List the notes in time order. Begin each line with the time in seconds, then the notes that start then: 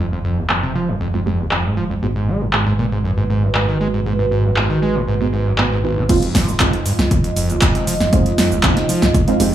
Already playing: F1 G#3 D#5
0.00 G#3 C4 D#4 F4 G4
0.12 F2
0.25 F2
0.38 D#2
0.49 F2 G#3 C4 D#4 F4, clap
0.63 C3
0.75 F3
0.89 F2
1.01 F2
1.14 F2 G#3 C4 D#4 F4
1.26 F2 G#3 C4 D#4 G4
1.39 D#2
1.51 F2, clap
1.65 G#2
1.77 F3
1.90 F2
2.03 G#1 G#2 B3 D#4 F#4 G#4 B4
2.16 G#2
2.28 G#3
2.41 F#2
2.53 G#2 B3 D#4 F#4 G#4, clap
2.67 G#2
2.79 A#2
2.92 G#2
3.04 F#2
3.18 G#2
3.30 G#2
3.43 F#2
3.55 G#2, clap
3.68 D#3
3.81 G#3
3.94 G#2
4.06 G#2 B3 D#4 F#4 G#4
4.19 G#2
4.31 G#2
4.45 F#2
4.56 G#2 B3 D#4 F#4 G#4, clap
4.70 D#3
4.82 G#3
4.95 G#2
5.08 G#2
5.21 G#2 B3 D#4 F#4 G#4
5.33 G#2
5.46 F#2
5.58 G#2 B3 D#4 F#4 B4, clap
5.72 G#2
5.84 G#1 B3 D#4 F#4 B4
5.97 C#3
6.09 F1 F2 G#3 C4 D#4 F4 D#5, kick, closed hi-hat, crash, cabasa
6.22 F2, closed hi-hat
6.35 F3, kick, snare, open hi-hat, cabasa
6.48 F1 D#2, cabasa
6.60 F2 G#3 C4 D#4 F4, kick, clap, closed hi-hat, cabasa
6.73 F2, closed hi-hat
6.86 G2, open hi-hat, cabasa
6.99 C2 F2, snare, cabasa
7.11 D#2, kick, closed hi-hat, cabasa
7.24 F2, closed hi-hat
7.36 F1 F2, open hi-hat, cabasa
7.50 D#2, closed hi-hat, cabasa
7.61 F2, kick, clap, closed hi-hat, cabasa
7.75 F1 C3, closed hi-hat
7.87 F3, open hi-hat, cabasa
8.00 F2, snare, cabasa
8.13 F1 F2 G#3 C4 D#4 F4, kick, closed hi-hat, cabasa
8.26 F2, closed hi-hat
8.38 F2, snare, open hi-hat, cabasa
8.51 F1 D#2, cabasa
8.63 F2 G#3 C4 D#4 F4, kick, clap, closed hi-hat, cabasa
8.77 C3, snare, closed hi-hat
8.89 F3, open hi-hat, cabasa
9.02 C2 F2, snare, cabasa
9.14 F2, kick, closed hi-hat, cabasa
9.28 F2 G#3 C4 D#4 F4, closed hi-hat
9.40 F1 F2 G#3 C4 D#4 G4, open hi-hat, cabasa